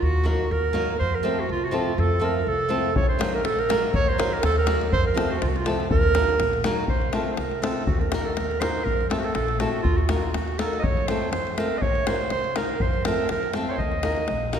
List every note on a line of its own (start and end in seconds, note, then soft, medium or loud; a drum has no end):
0.02 0.31 D#2 medium
0.02 0.27 F#4 loud
0.24 0.44 F#3 medium
0.24 0.44 A#3 medium
0.24 0.44 D#4 medium
0.24 0.44 F#4 medium
0.24 0.53 F#4 medium
0.24 0.45 A#4 medium
0.51 0.80 D#2 loud
0.51 0.99 A#4 loud
0.73 0.93 F#3 medium
0.73 0.93 A#3 medium
0.73 0.94 D#4 medium
0.73 0.94 F#4 medium
0.73 0.94 A#4 medium
0.99 1.30 F2 medium
0.99 1.16 C5 loud
1.15 1.41 A#4 medium
1.23 1.43 F3 medium
1.23 1.43 A3 medium
1.23 1.43 C4 medium
1.23 1.43 F4 medium
1.23 1.44 A4 medium
1.40 1.50 F#4 medium
1.49 1.79 C2 medium
1.49 1.66 F4 medium
1.64 1.74 F#4 medium
1.71 1.91 F3 medium
1.71 1.91 A3 medium
1.71 1.92 C4 medium
1.71 1.92 F4 medium
1.71 1.92 A4 medium
1.76 2.01 F4 medium
1.98 2.27 F2 loud
1.98 2.25 A4 medium
2.19 2.40 F3 medium
2.19 2.40 A3 medium
2.19 2.41 C4 medium
2.19 2.41 F4 medium
2.19 2.41 A4 medium
2.24 2.50 A#4 medium
2.47 2.76 C2 medium
2.47 2.96 A4 loud
2.69 2.89 F3 medium
2.69 2.89 A3 medium
2.69 2.90 C4 medium
2.69 2.90 F4 medium
2.69 2.90 A4 medium
2.96 3.25 D#2 medium
2.96 3.08 C#5 medium
2.96 davul low loud
3.09 3.32 C5 medium
3.19 3.39 F#3 medium
3.19 3.39 A#3 medium
3.19 3.39 D#4 medium
3.19 3.39 F#4 medium
3.19 3.39 A#4 medium
3.19 davul high medium
3.35 3.46 A#4 medium
3.44 3.74 A#1 medium
3.44 3.61 A4 loud
3.44 davul high medium
3.59 3.83 A#4 medium
3.59 davul high soft
3.69 3.88 F#3 medium
3.69 3.89 A#3 medium
3.69 3.89 D#4 medium
3.69 3.89 F#4 medium
3.69 3.89 A#4 medium
3.69 davul high medium
3.84 davul high soft
3.93 4.23 D#2 medium
3.93 4.10 C#5 loud
3.93 davul low medium
4.08 4.34 C5 loud
4.18 4.37 F#3 medium
4.18 4.37 A#3 medium
4.18 4.37 D#4 medium
4.18 4.38 F#4 medium
4.18 4.38 A#4 medium
4.18 davul high medium
4.33 4.44 A#4 medium
4.43 4.73 D#2 medium
4.43 4.56 A4 loud
4.43 davul high medium
4.58 4.80 A#4 loud
4.66 4.86 F#3 medium
4.66 4.86 A#3 medium
4.66 4.86 D#4 medium
4.66 4.86 F#4 medium
4.66 4.86 A#4 medium
4.66 davul high medium
4.81 davul high soft
4.92 5.22 F2 medium
4.92 5.05 C5 loud
4.92 davul low medium
5.07 5.32 A#4 medium
5.14 5.34 F3 medium
5.14 5.35 A3 medium
5.14 5.35 C4 medium
5.14 5.35 F4 medium
5.14 5.36 A4 medium
5.14 davul high medium
5.31 5.42 F#4 medium
5.42 5.71 C2 medium
5.42 5.50 F4 medium
5.42 davul high medium
5.49 5.58 F#4 medium
5.56 5.67 F4 medium
5.56 davul high soft
5.66 5.85 F3 medium
5.66 5.85 A3 medium
5.66 5.85 C4 medium
5.66 5.86 F4 medium
5.66 5.86 A4 medium
5.66 davul high medium
5.80 davul high soft
5.91 6.20 D#2 medium
5.91 6.61 A#4 loud
5.91 davul low loud
6.03 davul high soft
6.15 6.34 F#3 medium
6.15 6.34 A#3 medium
6.15 6.34 D#4 medium
6.15 6.34 F#4 medium
6.15 6.34 A#4 medium
6.15 davul high medium
6.29 davul high soft
6.40 6.70 A#1 medium
6.40 davul high medium
6.53 davul high soft
6.64 6.83 F#3 medium
6.64 6.83 A#3 medium
6.64 6.84 D#4 medium
6.64 6.84 F#4 medium
6.64 6.84 A#4 medium
6.64 davul high medium
6.88 7.18 F1 medium
6.88 7.12 C5 medium
6.88 davul low medium
7.02 davul high soft
7.12 7.32 A3 medium
7.12 7.33 C4 medium
7.12 7.33 F4 medium
7.12 7.33 A4 medium
7.12 7.31 A#4 medium
7.12 davul high medium
7.32 7.40 C5 medium
7.37 7.67 C2 medium
7.37 7.64 A#4 medium
7.37 davul high medium
7.51 davul high soft
7.62 7.81 A3 medium
7.62 7.82 C4 medium
7.62 7.82 F4 medium
7.62 7.86 A4 medium
7.62 7.82 A4 medium
7.62 davul high medium
7.86 8.17 D#2 medium
7.86 8.01 F#4 medium
7.86 davul low loud
8.00 8.26 A#4 medium
8.00 davul high soft
8.12 8.32 A#3 medium
8.12 8.32 D#4 medium
8.12 8.32 F#4 medium
8.12 8.32 A#4 medium
8.12 davul high medium
8.25 8.36 A4 medium
8.35 8.67 D#2 medium
8.35 8.62 A#4 loud
8.35 davul high medium
8.51 davul high soft
8.60 8.80 A#3 medium
8.60 8.80 D#4 medium
8.60 8.80 F#4 medium
8.60 8.81 A#4 medium
8.60 8.86 C5 medium
8.60 davul high medium
8.84 9.15 F2 medium
8.84 9.09 A#4 loud
8.84 davul low medium
9.01 davul high soft
9.09 9.29 A3 medium
9.09 9.30 C4 medium
9.09 9.30 F4 medium
9.09 9.20 A4 medium
9.09 9.30 A4 medium
9.09 davul high medium
9.19 9.26 F#4 medium
9.24 9.34 A4 medium
9.35 9.65 A#1 medium
9.35 9.61 A4 medium
9.35 davul high medium
9.48 davul high soft
9.59 9.79 A3 medium
9.59 9.79 C4 medium
9.59 9.80 F4 medium
9.59 9.82 F#4 medium
9.59 9.80 A4 medium
9.59 davul high medium
9.83 10.14 D#2 medium
9.83 9.99 F4 loud
9.83 davul low medium
9.97 10.25 F#4 medium
9.97 davul high soft
10.08 10.28 A#3 medium
10.08 10.28 D#4 medium
10.08 10.29 F#4 medium
10.08 10.29 A#4 medium
10.08 davul high medium
10.23 10.37 F4 medium
10.23 davul high soft
10.34 10.64 D#2 medium
10.34 10.60 F#4 medium
10.34 davul high medium
10.48 davul high soft
10.59 10.78 A#3 medium
10.59 10.79 D#4 medium
10.59 10.79 F#4 medium
10.59 10.81 A4 medium
10.59 10.79 A#4 medium
10.59 davul high medium
10.73 davul high soft
10.80 11.13 F2 medium
10.80 11.09 C#5 medium
10.80 10.84 D#5 medium
10.84 davul low loud
10.97 davul high soft
11.07 11.28 A3 medium
11.07 11.28 C4 soft
11.07 11.29 F4 soft
11.07 11.28 A4 medium
11.07 11.31 C5 medium
11.07 davul high medium
11.32 11.62 F2 medium
11.32 11.60 C5 medium
11.32 davul high medium
11.47 davul high soft
11.58 11.77 A3 medium
11.58 11.77 C4 medium
11.58 11.78 F4 medium
11.58 11.78 A4 medium
11.58 11.79 A#4 medium
11.58 davul high medium
11.78 12.12 D#2 medium
11.78 12.08 C#5 loud
11.78 11.83 D#5 medium
11.78 davul low medium
11.95 davul high soft
12.07 12.27 A#3 medium
12.07 12.27 D#4 medium
12.07 12.27 F#4 medium
12.07 12.27 A#4 medium
12.07 12.31 C5 medium
12.07 davul high medium
12.30 12.61 C2 medium
12.30 12.58 C5 loud
12.30 davul high medium
12.44 davul high soft
12.56 12.75 A#3 medium
12.56 12.76 D#4 medium
12.56 12.76 F#4 medium
12.56 12.83 A#4 medium
12.56 12.76 A#4 medium
12.56 davul high medium
12.80 13.11 F2 medium
12.80 13.07 C5 medium
12.80 davul low medium
12.93 davul high soft
13.05 13.26 A3 medium
13.05 13.26 C4 medium
13.05 13.26 F4 medium
13.05 13.26 A4 medium
13.05 13.30 A#4 loud
13.05 davul high medium
13.29 13.61 F2 medium
13.29 13.54 A#4 loud
13.29 davul high medium
13.43 davul high soft
13.54 13.74 A3 medium
13.54 13.75 C4 medium
13.54 13.75 F4 medium
13.54 13.75 A4 medium
13.54 davul high medium
13.68 13.72 C5 medium
13.68 13.75 C#5 medium
13.73 13.80 C5 medium
13.78 14.10 D#2 medium
13.78 14.53 D#5 medium
13.78 davul low medium
13.92 davul high soft
14.03 14.23 A#3 medium
14.03 14.23 D#4 medium
14.03 14.24 F#4 medium
14.03 14.24 A#4 medium
14.03 davul high medium
14.17 davul high soft
14.28 14.60 A#1 medium
14.28 davul high medium
14.53 14.60 A#3 medium
14.53 14.60 D#4 medium
14.53 14.60 F#4 medium
14.53 14.60 A#4 medium
14.53 davul high medium